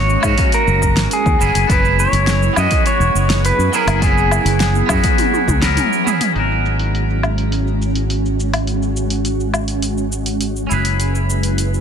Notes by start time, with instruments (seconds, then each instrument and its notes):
Already playing: fingered electric bass G#1, ambient pad G#3 C#4 F#4, clean electric guitar A#3 C#4 D#4 F#4, pedal steel guitar C#5
0.10 shaker
0.21 fingered electric bass G#2, clean electric guitar A#3 C#4 D#4, kick, low woodblock, shaker
0.28 clean electric guitar F#4
0.38 kick, open hi-hat, shaker
0.52 pedal steel guitar A#4, open hi-hat, shaker
0.67 fingered electric bass F#1, shaker
0.82 kick, shaker
0.97 fingered electric bass G#1, snare, open hi-hat, shaker
1.11 pedal steel guitar G#4, open hi-hat, shaker
1.26 fingered electric bass D#2, kick, shaker
1.39 fingered electric bass F#1, ambient pad F#3 B3 E4 G#4, clean electric guitar B3 C#4 E4 G#4, shaker
1.55 fingered electric bass F#1, open hi-hat, shaker
1.67 fingered electric bass F#1, clean electric guitar B3 C#4, kick, open hi-hat, shaker
1.72 clean electric guitar E4 G#4, pedal steel guitar B4
1.85 shaker
2.00 pedal steel guitar C#5, shaker
2.12 fingered electric bass F#1, open hi-hat, shaker
2.27 snare, open hi-hat, shaker
2.43 shaker
2.53 fingered electric bass F#2, clean electric guitar B3 C#4, low woodblock
2.57 clean electric guitar E4 F#4, pedal steel guitar D#5, shaker
2.71 kick, open hi-hat, shaker
2.86 pedal steel guitar C#5, open hi-hat, shaker
3.00 fingered electric bass E1, shaker
3.15 fingered electric bass F#1, shaker
3.30 snare, open hi-hat, shaker
3.45 pedal steel guitar B4, open hi-hat, shaker
3.58 fingered electric bass F#2, shaker
3.72 clean electric guitar B3 C#4 E4 G#4, pedal steel guitar A#4, shaker
3.87 fingered electric bass F#1, open hi-hat, low woodblock, shaker
3.99 clean electric guitar B3 C#4, kick, open hi-hat
4.03 clean electric guitar E4 G#4, pedal steel guitar G#4, shaker
4.18 shaker
4.31 low woodblock, shaker
4.45 fingered electric bass F#1, open hi-hat, shaker
4.60 snare, open hi-hat, shaker
4.75 shaker
4.86 fingered electric bass F#2, clean electric guitar B3 C#4, kick, low woodblock, shaker
4.91 clean electric guitar E4 F#4
5.04 kick, open hi-hat, shaker
5.18 open hi-hat, high tom, shaker
5.33 high tom, shaker
5.48 fingered electric bass C#2, kick, high tom, shaker
5.61 clean electric guitar B3 C#4 E4 A#4, snare, open hi-hat, mid tom, shaker
5.77 open hi-hat, mid tom, shaker
5.93 shaker
6.04 clean electric guitar B3 C#4 E4 G#4, mid tom, shaker
6.21 mid tom, open hi-hat, shaker
6.33 fingered electric bass G#1, ambient pad G#3 C#4 F#4, clean electric guitar C#4 D#4, open hi-hat, shaker
6.37 clean electric guitar F#4 A#4
6.51 shaker
6.65 shaker
6.79 open hi-hat, shaker
6.95 open hi-hat, shaker
7.10 shaker
7.23 low woodblock, shaker
7.38 open hi-hat, shaker
7.52 open hi-hat, shaker
7.67 shaker
7.82 shaker
7.95 open hi-hat, shaker
8.10 open hi-hat, shaker
8.26 shaker
8.40 shaker
8.54 open hi-hat, low woodblock, shaker
8.67 open hi-hat, shaker
8.83 shaker
8.97 shaker
9.10 open hi-hat, shaker
9.25 open hi-hat, shaker
9.40 shaker
9.54 low woodblock, shaker
9.68 open hi-hat, shaker
9.82 open hi-hat, shaker
9.98 shaker
10.12 shaker
10.26 open hi-hat, shaker
10.41 open hi-hat, shaker
10.56 shaker
10.67 ambient pad F#3 E4 G#4 B4, clean electric guitar C#4 E4
10.71 fingered electric bass F#1, clean electric guitar G#4 B4, shaker
10.85 open hi-hat, shaker
11.00 open hi-hat, shaker
11.15 shaker
11.30 shaker
11.43 open hi-hat, shaker
11.58 open hi-hat, shaker
11.74 shaker